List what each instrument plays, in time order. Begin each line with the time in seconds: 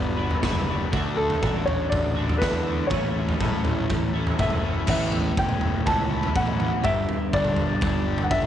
Already playing: picked electric bass G1, overdriven electric guitar G3 B3 D4 B4, clean electric guitar F#4, upright piano D5
0.16 overdriven electric guitar B3 D4 B4, clean electric guitar F#4
0.31 floor tom
0.41 picked electric bass F#1, overdriven electric guitar G3 B3 D4 B4, clean electric guitar F#4, kick, snare
0.55 floor tom
0.67 overdriven electric guitar B3 D4 B4, clean electric guitar F#4
0.91 picked electric bass D2, overdriven electric guitar D3 D4 F#4 A4, clean electric guitar A3, kick, floor tom
1.16 overdriven electric guitar D4 F#4 A4, upright piano A4
1.30 floor tom
1.40 picked electric bass A1, overdriven electric guitar D3 D4 F#4 A4, clean electric guitar A3, kick, mid tom
1.66 upright piano C#5, floor tom
1.89 picked electric bass A1, upright piano D5, kick, floor tom
2.15 overdriven electric guitar D4 F#4 A4
2.19 clean electric guitar A3
2.29 floor tom
2.38 picked electric bass E2, overdriven electric guitar D3 D4, clean electric guitar A3, upright piano B4, kick, snare
2.42 overdriven electric guitar F#4 A4
2.53 floor tom
2.65 clean electric guitar A3, overdriven electric guitar D4 F#4 A4
2.87 picked electric bass A1, overdriven electric guitar A2 A3, upright piano C#5, kick, floor tom
2.92 clean electric guitar E3, overdriven electric guitar C#4 E4 A4
3.15 overdriven electric guitar C#4 E4 A4
3.29 floor tom
3.39 picked electric bass A2, clean electric guitar E3, overdriven electric guitar A3 C#4 E4 A4, kick, mid tom
3.65 picked electric bass A1, floor tom
3.90 picked electric bass A1, kick, floor tom
4.13 overdriven electric guitar C#4 E4 A4
4.18 clean electric guitar A3
4.27 floor tom
4.37 picked electric bass F#1, overdriven electric guitar A2 A3 C#4 E4 A4, clean electric guitar E3, upright piano E5, kick, mid tom
4.50 floor tom
4.62 clean electric guitar A3, overdriven electric guitar C#4 E4 A4
4.87 picked electric bass A1, overdriven electric guitar A2, clean electric guitar E3 B3 C#4 E4, upright piano E5, kick, floor tom, crash
5.12 floor tom
5.37 picked electric bass F#1, overdriven electric guitar C#4, upright piano G5, kick
5.49 mid tom
5.61 overdriven electric guitar E3, floor tom
5.86 picked electric bass C#2, overdriven electric guitar C#4, upright piano A5, kick, floor tom
6.10 overdriven electric guitar E4
6.23 floor tom
6.34 picked electric bass A1, overdriven electric guitar C#4, upright piano F#5, kick
6.47 mid tom
6.59 picked electric bass A1, overdriven electric guitar E3, floor tom
6.84 picked electric bass G1, overdriven electric guitar G2, clean electric guitar D3 G3 B3 D4 G4, upright piano E5, kick, floor tom
7.09 floor tom
7.33 picked electric bass G1, overdriven electric guitar D4, upright piano D5, kick
7.45 mid tom
7.56 overdriven electric guitar G3, floor tom
7.81 picked electric bass G1, overdriven electric guitar D4, kick, floor tom
8.07 overdriven electric guitar G4
8.18 floor tom
8.23 upright piano F#5
8.31 picked electric bass G1, overdriven electric guitar D4, upright piano E5, kick
8.42 mid tom